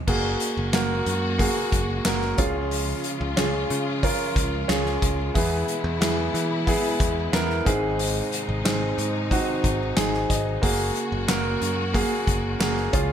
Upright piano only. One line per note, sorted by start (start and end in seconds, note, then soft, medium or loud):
0.07 0.54 A#3 medium
0.07 0.55 F#4 medium
0.07 0.55 G#4 medium
0.73 1.20 A#3 medium
0.73 1.20 F#4 medium
0.73 1.21 A#4 medium
1.38 1.86 A#3 medium
1.38 1.86 F#4 medium
1.38 1.87 G#4 medium
2.05 2.38 A#3 medium
2.05 2.38 F#4 medium
2.05 2.39 A#4 medium
2.38 3.33 C#3 medium
2.38 3.17 C#4 medium
2.38 3.17 F4 medium
2.38 3.18 G#4 loud
3.36 3.84 C#4 medium
3.36 3.85 F4 medium
3.36 3.85 G#4 medium
4.03 4.50 C#4 medium
4.03 4.50 F4 medium
4.03 4.51 A#4 medium
4.68 5.16 C#4 medium
4.68 5.16 F4 medium
4.68 5.17 G#4 loud
5.34 6.30 E3 medium
5.34 5.82 B3 medium
5.34 5.82 E4 medium
5.34 5.82 G#4 medium
6.00 6.48 B3 medium
6.00 6.48 E4 medium
6.00 6.49 G#4 medium
6.67 7.14 B3 medium
6.67 7.14 E4 medium
6.67 7.15 G#4 loud
7.32 7.66 B3 medium
7.32 7.66 E4 medium
7.32 7.67 A#4 loud
7.65 8.61 G#2 medium
7.65 8.45 C4 medium
7.65 8.45 D#4 medium
7.65 8.45 G#4 loud
8.64 9.11 C4 medium
8.64 9.12 D#4 medium
8.64 9.12 G#4 medium
9.30 9.78 C4 medium
9.30 9.78 D#4 medium
9.30 9.78 F#4 medium
9.95 10.43 C4 medium
9.95 10.44 D#4 medium
9.95 10.44 G#4 loud
9.95 10.27 G#5 medium
10.30 10.60 D#5 medium
10.62 11.09 A#3 medium
10.62 11.10 F#4 medium
10.62 11.10 G#4 medium
11.28 11.75 A#3 medium
11.28 11.75 F#4 medium
11.28 11.76 A#4 loud
11.93 12.41 A#3 medium
11.93 12.41 F#4 medium
11.93 12.42 G#4 loud
12.60 12.93 A#3 medium
12.60 12.93 F#4 medium
12.60 12.93 G#4 medium
12.93 13.12 C#3 medium
12.93 13.12 C#4 medium
12.93 13.12 F4 medium
12.93 13.12 G#4 loud